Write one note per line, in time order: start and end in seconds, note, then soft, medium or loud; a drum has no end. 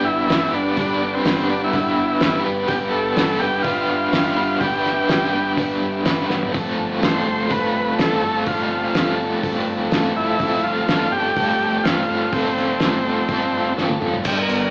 0.00 0.24 G1 medium
0.00 4.90 G2 medium
0.00 5.53 D3 medium
0.00 0.29 G3 medium
0.00 3.64 G3 medium
0.00 0.31 B3 medium
0.00 0.30 D4 medium
0.00 6.49 G4 medium
0.00 0.31 B4 medium
0.00 6.49 B4 medium
0.00 2.65 D5 medium
0.00 6.49 G5 medium
0.05 0.54 E4 loud
0.26 0.48 G1 medium
0.26 0.78 G3 medium
0.26 0.56 D4 medium
0.26 snare loud
0.26 open hi-hat soft
0.32 0.55 B3 medium
0.32 0.53 B4 medium
0.52 0.72 G1 medium
0.52 0.80 B3 medium
0.52 1.15 D4 medium
0.52 0.80 B4 medium
0.56 0.78 D4 medium
0.77 1.18 G1 medium
0.77 1.24 G3 medium
0.77 1.26 B3 loud
0.77 1.25 D4 loud
0.77 1.27 B4 medium
0.77 kick loud
0.77 open hi-hat soft
1.14 1.50 C4 medium
1.25 1.65 G1 medium
1.25 1.73 G3 loud
1.25 1.51 B3 loud
1.25 1.51 D4 medium
1.25 1.50 B4 loud
1.25 snare loud
1.25 open hi-hat soft
1.50 1.75 B3 medium
1.50 1.62 D4 medium
1.50 1.74 D4 medium
1.50 1.75 B4 medium
1.64 2.42 E4 medium
1.73 1.94 G1 medium
1.73 2.23 G3 medium
1.73 2.24 B3 medium
1.73 2.23 D4 medium
1.73 2.25 B4 medium
1.73 kick loud
1.73 open hi-hat soft
1.98 2.18 G1 medium
2.21 2.42 G1 medium
2.21 2.67 G3 medium
2.21 2.45 B3 medium
2.21 2.47 D4 medium
2.21 snare loud
2.21 open hi-hat medium
2.25 2.44 B4 medium
2.45 2.66 G1 medium
2.45 2.69 B3 medium
2.45 2.69 D4 medium
2.45 2.70 B4 medium
2.67 2.89 G1 medium
2.67 3.16 G3 loud
2.67 3.18 B3 loud
2.67 3.17 D4 loud
2.67 2.79 G4 medium
2.67 3.19 B4 loud
2.67 6.50 E5 medium
2.67 kick loud
2.67 open hi-hat soft
2.91 3.14 G1 medium
2.91 3.41 A4 loud
3.16 3.39 G1 loud
3.16 3.64 G3 loud
3.16 3.42 B3 loud
3.16 3.43 D4 medium
3.16 3.41 B4 loud
3.16 snare loud
3.16 open hi-hat soft
3.39 3.62 G1 medium
3.39 3.65 B3 medium
3.39 3.62 G4 loud
3.39 3.67 B4 medium
3.44 3.66 D4 medium
3.62 3.85 G1 medium
3.62 4.11 G3 medium
3.62 4.63 F4 medium
3.62 kick loud
3.62 open hi-hat soft
3.66 4.13 B3 medium
3.66 4.14 D4 medium
3.66 4.14 B4 medium
3.88 4.09 G1 medium
4.12 4.33 G1 medium
4.12 4.60 G3 medium
4.12 4.36 B3 medium
4.12 4.38 D4 medium
4.12 4.35 B4 medium
4.12 snare loud
4.12 open hi-hat medium
4.36 4.57 G1 medium
4.36 4.62 B3 medium
4.36 4.62 D4 medium
4.36 4.62 B4 medium
4.60 5.02 G1 medium
4.60 5.08 G3 medium
4.60 5.10 B3 loud
4.60 5.10 D4 medium
4.60 5.53 G4 medium
4.60 5.10 B4 loud
4.60 kick loud
4.60 open hi-hat soft
4.86 snare soft
5.09 5.50 G1 loud
5.09 5.56 G3 medium
5.09 5.33 B3 medium
5.09 5.35 D4 medium
5.09 5.32 B4 loud
5.09 snare loud
5.09 open hi-hat soft
5.33 5.58 B3 medium
5.33 5.58 D4 medium
5.33 5.58 B4 medium
5.57 5.78 G1 medium
5.57 6.03 G3 medium
5.57 6.05 B3 medium
5.57 6.05 D4 medium
5.57 6.06 B4 medium
5.57 kick loud
5.57 open hi-hat soft
5.81 6.02 G1 medium
6.04 6.26 G1 medium
6.04 6.52 G3 medium
6.04 6.30 B3 medium
6.04 6.32 D4 medium
6.04 6.29 B4 medium
6.04 snare loud
6.04 open hi-hat soft
6.30 6.50 G1 medium
6.30 6.53 B3 medium
6.30 6.54 D4 medium
6.30 6.52 B4 medium
6.30 snare medium
6.43 floor tom medium
6.53 6.74 G1 medium
6.53 6.99 F3 loud
6.53 7.00 A3 medium
6.53 14.22 C4 medium
6.53 7.01 C4 loud
6.53 7.01 F4 loud
6.53 14.22 A4 medium
6.53 7.02 A4 loud
6.53 14.22 D5 medium
6.53 14.21 A5 medium
6.53 kick loud
6.53 open hi-hat soft
6.79 6.99 G1 medium
7.00 7.22 G1 medium
7.00 8.47 F3 medium
7.00 7.48 A3 medium
7.00 7.27 C4 loud
7.00 7.26 F4 medium
7.00 7.25 A4 medium
7.00 snare loud
7.00 open hi-hat medium
7.04 7.52 C5 medium
7.25 7.47 G1 medium
7.25 7.49 C4 medium
7.25 7.49 F4 medium
7.25 7.50 A4 medium
7.48 7.71 G1 medium
7.48 7.98 A3 medium
7.48 7.99 C4 medium
7.48 8.00 F4 medium
7.48 8.01 A4 medium
7.48 7.95 B4 loud
7.48 kick loud
7.48 open hi-hat medium
7.74 7.94 G1 medium
7.98 8.18 G1 medium
7.98 8.47 A3 medium
7.98 8.24 C4 medium
7.98 8.24 F4 medium
7.98 8.44 A4 medium
7.98 8.22 A4 medium
7.98 snare loud
7.98 open hi-hat soft
8.23 8.43 G1 medium
8.23 8.47 C4 medium
8.23 8.48 F4 medium
8.23 8.49 A4 medium
8.46 8.87 G1 medium
8.46 8.95 F3 loud
8.46 8.95 A3 medium
8.46 8.96 C4 loud
8.46 8.70 F4 medium
8.46 8.96 F4 loud
8.46 8.97 A4 loud
8.46 kick medium
8.46 open hi-hat soft
8.71 9.16 F4 medium
8.94 9.35 G1 medium
8.94 10.39 F3 medium
8.94 9.42 A3 medium
8.94 9.21 C4 medium
8.94 9.20 F4 loud
8.94 9.19 A4 medium
8.94 snare loud
8.94 open hi-hat soft
9.19 9.43 C4 medium
9.19 9.44 F4 medium
9.19 9.45 A4 medium
9.43 9.64 G1 medium
9.43 9.91 A3 medium
9.43 9.92 C4 medium
9.43 9.93 F4 medium
9.43 9.93 A4 medium
9.43 kick loud
9.43 open hi-hat soft
9.67 9.87 G1 medium
9.91 10.11 G1 medium
9.91 10.39 A3 medium
9.91 10.18 C4 medium
9.91 10.17 F4 medium
9.91 10.15 A4 medium
9.91 snare loud
9.91 open hi-hat soft
10.16 10.36 G1 medium
10.16 10.40 C4 medium
10.16 10.65 E4 medium
10.16 10.40 F4 medium
10.16 10.41 A4 medium
10.39 10.60 G1 medium
10.39 10.87 F3 medium
10.39 10.88 A3 loud
10.39 10.88 C4 loud
10.39 10.88 F4 loud
10.39 10.89 A4 loud
10.39 kick loud
10.39 open hi-hat medium
10.63 10.83 G1 medium
10.63 11.13 F4 medium
10.87 11.08 G1 loud
10.87 12.31 F3 medium
10.87 11.38 A3 medium
10.87 11.14 C4 loud
10.87 11.14 F4 loud
10.87 11.13 A4 loud
10.87 snare loud
10.87 open hi-hat medium
11.11 11.32 G1 medium
11.11 11.38 C4 medium
11.11 11.38 F4 medium
11.11 11.78 G4 loud
11.11 11.39 A4 medium
11.36 11.57 G1 medium
11.36 11.84 A3 medium
11.36 11.85 C4 medium
11.36 11.85 F4 medium
11.36 kick medium
11.36 open hi-hat soft
11.40 11.86 A4 medium
11.59 11.80 G1 medium
11.79 11.85 G4 medium
11.84 12.05 G1 medium
11.84 12.32 A3 medium
11.84 12.09 C4 medium
11.84 12.34 F4 medium
11.84 12.09 F4 medium
11.84 12.07 A4 medium
11.84 snare loud
11.84 open hi-hat medium
12.09 12.29 G1 medium
12.09 12.32 C4 medium
12.09 12.32 F4 medium
12.09 12.33 A4 medium
12.32 12.73 G1 medium
12.32 12.79 F3 loud
12.32 12.80 A3 loud
12.32 13.74 C4 medium
12.32 12.80 C4 loud
12.32 12.81 F4 loud
12.32 12.81 A4 loud
12.32 kick loud
12.32 open hi-hat soft
12.57 snare soft
12.80 13.22 G1 medium
12.80 13.29 F3 medium
12.80 13.27 A3 medium
12.80 13.06 C4 loud
12.80 13.05 F4 loud
12.80 13.04 A4 loud
12.80 snare loud
12.80 open hi-hat soft
13.05 13.29 C4 medium
13.05 13.29 F4 medium
13.05 13.30 A4 medium
13.28 13.49 G1 medium
13.28 13.76 A3 medium
13.28 13.77 C4 medium
13.28 13.77 F4 medium
13.28 13.78 A4 medium
13.28 kick medium
13.28 open hi-hat soft
13.52 13.73 G1 medium
13.77 13.98 G1 medium
13.77 14.24 A3 medium
13.77 14.01 C4 medium
13.77 13.99 F4 medium
13.77 13.99 A4 medium
13.77 snare medium
13.89 high tom medium
14.00 14.22 G1 medium
14.00 14.25 C4 medium
14.00 14.24 F4 medium
14.00 14.23 A4 medium
14.00 mid tom medium
14.14 floor tom medium
14.24 14.47 G1 medium
14.24 14.70 G2 medium
14.24 14.70 B3 medium
14.24 14.70 G4 medium
14.24 14.38 G4 medium
14.24 14.70 D5 medium
14.24 14.70 G5 medium
14.24 kick loud
14.24 crash loud
14.24 shaker medium
14.37 14.40 A4 medium
14.42 14.70 A#4 medium
14.48 14.70 G1 medium
14.48 14.70 B3 medium
14.48 open hi-hat medium
14.48 shaker medium